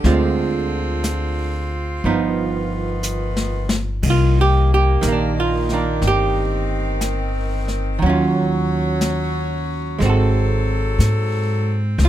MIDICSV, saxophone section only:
0, 0, Header, 1, 2, 480
1, 0, Start_track
1, 0, Key_signature, -3, "minor"
1, 0, Tempo, 995025
1, 18, Time_signature, 4, 2, 24, 8
1, 5832, End_track
2, 0, Start_track
2, 0, Title_t, "Saxophone section"
2, 0, Program_c, 0, 65
2, 0, Note_on_c, 0, 50, 78
2, 24, Note_on_c, 0, 65, 71
2, 26, Note_on_c, 0, 60, 62
2, 957, Note_off_c, 0, 50, 0
2, 973, Note_off_c, 0, 60, 0
2, 987, Note_on_c, 0, 51, 62
2, 988, Note_on_c, 0, 59, 58
2, 1860, Note_off_c, 0, 51, 0
2, 1860, Note_off_c, 0, 59, 0
2, 1860, Note_off_c, 0, 65, 0
2, 1942, Note_on_c, 0, 51, 77
2, 1944, Note_on_c, 0, 58, 68
2, 2894, Note_off_c, 0, 58, 0
2, 2903, Note_on_c, 0, 60, 59
2, 3843, Note_off_c, 0, 51, 0
2, 3853, Note_off_c, 0, 60, 0
2, 3861, Note_on_c, 0, 61, 62
2, 3865, Note_on_c, 0, 54, 78
2, 4810, Note_off_c, 0, 61, 0
2, 4812, Note_off_c, 0, 54, 0
2, 4823, Note_on_c, 0, 54, 66
2, 4824, Note_on_c, 0, 69, 79
2, 4825, Note_on_c, 0, 60, 62
2, 5705, Note_off_c, 0, 54, 0
2, 5705, Note_off_c, 0, 69, 0
2, 5787, Note_on_c, 0, 49, 82
2, 5791, Note_on_c, 0, 65, 80
2, 5832, Note_off_c, 0, 49, 0
2, 5832, Note_off_c, 0, 60, 0
2, 5832, Note_off_c, 0, 65, 0
2, 5832, End_track
0, 0, End_of_file